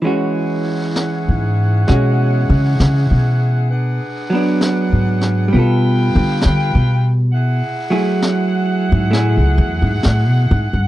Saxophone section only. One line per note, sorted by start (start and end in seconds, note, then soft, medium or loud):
0.03 3.67 E4 medium
0.03 5.47 G#4 medium
0.03 3.67 C#5 medium
0.03 3.67 F#5 medium
3.70 5.50 D4 medium
3.70 5.50 B4 medium
3.70 5.50 F#5 medium
5.51 7.15 F4 medium
5.51 7.15 B4 medium
5.51 7.15 G5 medium
7.32 10.88 E4 medium
7.32 10.88 G#4 medium
7.32 10.88 F#5 medium